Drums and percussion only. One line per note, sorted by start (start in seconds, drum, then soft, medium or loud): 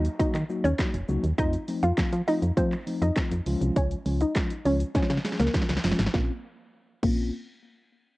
0.05 closed hi-hat medium
0.05 shaker medium
0.20 kick loud
0.20 closed hi-hat medium
0.20 shaker medium
0.35 clap medium
0.35 closed hi-hat medium
0.35 shaker soft
0.50 shaker medium
0.65 closed hi-hat medium
0.65 shaker medium
0.79 kick loud
0.79 snare medium
0.79 clap loud
0.79 closed hi-hat medium
0.79 shaker medium
0.94 closed hi-hat medium
0.94 shaker medium
1.09 shaker medium
1.24 closed hi-hat medium
1.24 shaker medium
1.39 kick loud
1.39 closed hi-hat medium
1.39 shaker medium
1.53 closed hi-hat medium
1.53 shaker medium
1.68 open hi-hat medium
1.68 shaker medium
1.83 closed hi-hat soft
1.83 shaker medium
1.98 kick loud
1.98 snare medium
1.98 clap loud
1.98 closed hi-hat medium
1.98 shaker medium
2.13 closed hi-hat medium
2.13 shaker medium
2.28 open hi-hat medium
2.28 shaker medium
2.43 closed hi-hat medium
2.43 shaker medium
2.57 kick loud
2.57 closed hi-hat medium
2.57 shaker medium
2.72 clap medium
2.72 closed hi-hat medium
2.72 shaker medium
2.87 open hi-hat medium
2.87 shaker medium
3.02 closed hi-hat medium
3.02 shaker medium
3.17 kick loud
3.17 snare medium
3.17 clap loud
3.17 closed hi-hat medium
3.17 shaker medium
3.31 closed hi-hat medium
3.31 shaker medium
3.46 open hi-hat medium
3.46 shaker medium
3.61 closed hi-hat medium
3.61 shaker medium
3.76 kick loud
3.76 closed hi-hat medium
3.76 shaker medium
3.91 closed hi-hat medium
3.91 shaker soft
4.06 open hi-hat medium
4.06 shaker medium
4.20 closed hi-hat soft
4.20 shaker medium
4.35 kick loud
4.35 snare loud
4.35 clap loud
4.35 closed hi-hat medium
4.35 shaker medium
4.50 closed hi-hat medium
4.50 shaker medium
4.65 open hi-hat medium
4.65 shaker medium
4.80 closed hi-hat medium
4.80 shaker medium
4.95 kick loud
4.95 snare medium
4.95 closed hi-hat medium
4.95 shaker medium
5.02 snare medium
5.10 snare medium
5.10 closed hi-hat medium
5.10 shaker medium
5.17 snare medium
5.25 snare medium
5.25 open hi-hat medium
5.25 shaker medium
5.32 snare medium
5.39 snare medium
5.39 closed hi-hat medium
5.39 shaker medium
5.47 snare medium
5.54 kick loud
5.54 snare medium
5.54 closed hi-hat medium
5.54 shaker medium
5.62 snare medium
5.69 snare medium
5.69 closed hi-hat medium
5.69 shaker medium
5.77 snare medium
5.84 snare loud
5.84 open hi-hat medium
5.84 shaker medium
5.91 snare medium
5.99 snare loud
5.99 closed hi-hat medium
5.99 shaker medium
6.06 snare medium
6.14 kick loud
6.14 snare medium
7.03 kick loud
7.03 crash medium